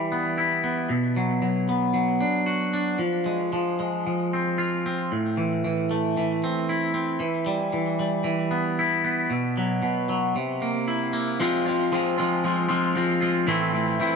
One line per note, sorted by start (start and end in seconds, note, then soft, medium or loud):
0.00 0.90 E3 medium
0.00 0.90 G3 medium
0.12 0.62 B3 medium
0.38 0.90 E4 medium
0.64 0.90 B3 medium
0.89 2.21 B2 medium
1.16 1.41 F#3 medium
1.42 1.93 F#3 medium
1.69 3.01 B3 medium
1.94 2.98 F#3 medium
2.21 2.72 D4 medium
2.46 3.00 F#4 medium
2.73 3.00 D4 medium
2.99 3.52 F3 medium
3.26 3.79 G#3 medium
3.53 4.05 F3 medium
3.80 5.11 G#3 medium
4.07 5.11 F3 medium
4.33 4.85 C4 medium
4.58 5.11 F4 medium
4.86 5.12 C4 medium
5.12 6.43 A2 medium
5.37 5.63 E3 medium
5.64 6.16 E3 medium
5.91 7.21 A3 medium
6.17 7.19 E3 medium
6.44 6.93 C4 medium
6.69 7.21 E4 medium
6.94 7.21 C4 medium
7.20 7.72 E3 medium
7.46 7.98 G3 medium
7.73 8.23 E3 medium
7.99 9.30 G3 medium
8.24 9.30 E3 medium
8.51 9.03 B3 medium
8.79 9.31 E4 medium
9.04 9.31 B3 medium
9.30 9.81 B2 medium
9.57 10.08 F#3 medium
9.83 10.35 B2 medium
10.09 10.35 F#3 medium
10.36 11.39 C3 medium
10.62 11.12 A#3 medium
10.88 11.40 E4 medium
11.13 11.39 A#3 medium
11.40 11.90 F3 medium
11.40 11.67 G#3 loud
11.40 11.67 C4 loud
11.40 11.64 F4 medium
11.66 11.91 G#3 medium
11.66 11.93 C4 medium
11.66 11.93 F4 medium
11.92 12.19 F3 medium
11.92 12.18 G#3 medium
11.92 12.18 C4 medium
11.92 12.17 F4 medium
12.18 12.43 F3 medium
12.18 12.43 G#3 medium
12.18 12.44 C4 medium
12.18 12.45 F4 loud
12.44 12.69 F3 medium
12.44 12.68 G#3 medium
12.44 12.68 C4 medium
12.44 12.67 F4 medium
12.69 12.94 F3 medium
12.69 12.95 G#3 medium
12.69 12.95 C4 medium
12.69 12.96 F4 loud
12.95 13.46 F3 medium
12.95 13.21 G#3 medium
12.95 13.20 C4 medium
12.95 13.19 F4 medium
13.21 13.47 G#3 medium
13.21 13.46 C4 medium
13.21 13.46 F4 medium
13.47 13.99 A2 medium
13.47 13.99 E3 loud
13.47 13.73 A3 medium
13.47 13.72 C4 loud
13.47 13.72 E4 loud
13.73 13.99 A3 medium
13.73 14.00 C4 medium
13.73 14.01 E4 medium
14.00 14.16 E3 medium
14.00 14.16 A3 medium
14.00 14.16 C4 medium
14.00 14.16 E4 loud